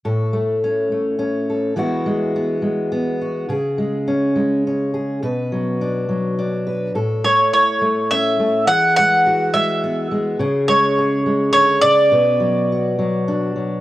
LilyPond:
<<
  \new Staff \with { instrumentName = "Mandolin" } { \time 3/4 \key a \major \tempo 4 = 104 r2. | r2. | r2. | r2. |
r8 cis''8 cis''4 e''4 | fis''8 fis''4 e''4 r8 | r8 cis''4. cis''8 d''8~ | d''2~ d''8 r8 | }
  \new Staff \with { instrumentName = "Steel-string acoustic guitar" } { \time 3/4 \key a \major << { a'4 cis'4 cis'8 a'8 | <gis b e' fis'>4 b4 b8 fis'8 | gis'4 cis'4 cis'8 gis'8 | b'4 d'4 d'8 b'8 |
a'4 e'4 cis'4 | gis'4 fis'4 b4 | gis'4 gis'2 | b'4 fis'4 d'4 | } \\ { a,8 a4 a4. | e8 gis4 gis4. | cis8 gis4 gis4. | b,8 fis4 fis4. |
a,8 a4 a4 a8 | e8 gis4 gis4 gis8 | cis8 gis4 gis8 d8 cis8 | b,8 fis4 fis4 fis8 | } >> }
>>